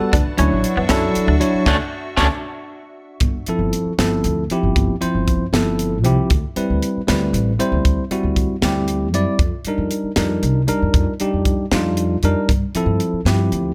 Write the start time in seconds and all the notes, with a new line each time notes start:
Already playing: G3 B3 F#4 A4 B4 F#5 A5
0.11 D2 D4 F#4 E5 C#6, kick, closed hi-hat
0.26 muted upright bass stroke
0.38 D2 F#3 C#4 D4 E4 C#5, closed hi-hat
0.52 A1
0.64 closed hi-hat
0.77 F#2 B3
0.89 F#3 C#4 D4 E4 A4, kick, snare, closed hi-hat
1.15 muted upright bass stroke, closed hi-hat
1.28 D2 D4
1.40 F#3 D4 E4 C#5, closed hi-hat
1.54 muted upright bass stroke
1.66 D2 A3 C#4 D4 F#4, kick, snare
2.17 D2 A3 C#4 D4 F#4, kick, snare
3.20 G1, kick, closed hi-hat
3.46 F3 C4 E4 A4, muted upright bass stroke, closed hi-hat
3.59 G1
3.73 closed hi-hat
3.85 muted upright bass stroke
3.98 G1 F3 C4 E4 A4, snare, closed hi-hat
4.24 D2, closed hi-hat
4.50 F3 C4 E4 G4, muted upright bass stroke, closed hi-hat
4.63 G1
4.76 G1, kick, closed hi-hat
5.01 F3 C4 E4 C5, muted upright bass stroke, closed hi-hat
5.15 G1
5.28 kick, closed hi-hat
5.53 G1 F3 C4 E4 A4, snare, closed hi-hat
5.79 closed hi-hat
6.04 C2 F3 C4 E4 G4, closed hi-hat
6.30 D2, kick, closed hi-hat
6.56 G3 C4 E4 B4, muted upright bass stroke, closed hi-hat
6.70 D2
6.83 closed hi-hat
6.97 muted upright bass stroke
7.08 D2 G3 C4 E4 B4, snare, closed hi-hat
7.33 A1, closed hi-hat
7.59 G3 C4 E4 C5, muted upright bass stroke, closed hi-hat
7.72 D2
7.85 D2, kick, closed hi-hat
8.10 G3 C4 E4 F#4, muted upright bass stroke, closed hi-hat
8.23 D2
8.36 kick, closed hi-hat
8.62 D2 G3 C4 E4 G4, snare, closed hi-hat
8.88 closed hi-hat
9.13 F#2 G3 C4 E4 D5, closed hi-hat
9.39 F2, kick, closed hi-hat
9.64 G3 D4 D#4, muted upright bass stroke, closed hi-hat
9.68 A#4
9.78 F2
9.91 closed hi-hat
10.04 muted upright bass stroke
10.16 F2 G3 D4 D#4 A#4, snare, closed hi-hat
10.43 C2, closed hi-hat
10.68 G3 D4 D#4 A#4, muted upright bass stroke, closed hi-hat
10.82 F2
10.94 F2, kick, closed hi-hat
11.20 G3 D4 D#4 G4, muted upright bass stroke, closed hi-hat
11.33 F2
11.45 kick, closed hi-hat
11.71 F2 G3 D4 D#4 F4, snare, closed hi-hat
11.97 closed hi-hat
12.23 F2 G3 D4 D#4 A#4, closed hi-hat
12.49 G2, kick, closed hi-hat
12.74 F3 C4 E4 A4, muted upright bass stroke, closed hi-hat
12.86 G2
13.00 closed hi-hat
13.13 muted upright bass stroke
13.25 G2 F3 C4 E4 G4, snare, closed hi-hat
13.52 D2, closed hi-hat